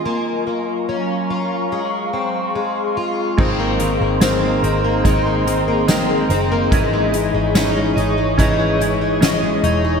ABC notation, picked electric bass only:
X:1
M:4/4
L:1/16
Q:1/4=72
K:Abmix
V:1 name="Picked electric bass" clef=bass
z16 | A,,,3 A,,,3 A,,,2 A,,,6 G,,,2 | A,,,3 A,,,3 A,,,2 A,,,6 _F,,,2 |]